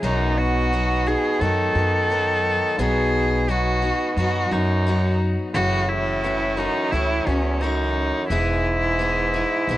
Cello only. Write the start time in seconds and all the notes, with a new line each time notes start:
0.04 D#4
0.38 F#4
1.07 G#4
1.42 A4
2.79 G#4
3.50 F#4
4.16 F#4
4.52 D#4
5.55 F#4
5.89 E4
6.58 D#4
6.91 E4
7.27 C#4
7.61 D#4
8.30 E4